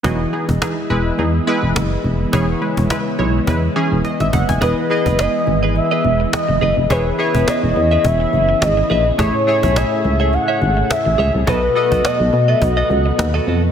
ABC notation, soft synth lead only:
X:1
M:4/4
L:1/16
Q:"Swing 16ths" 1/4=105
K:E
V:1 name="Soft synth lead"
z16 | z16 | B4 d4 e4 d3 z | B4 d4 e4 d3 z |
c4 e4 f4 e3 z | B4 d3 e d6 z2 |]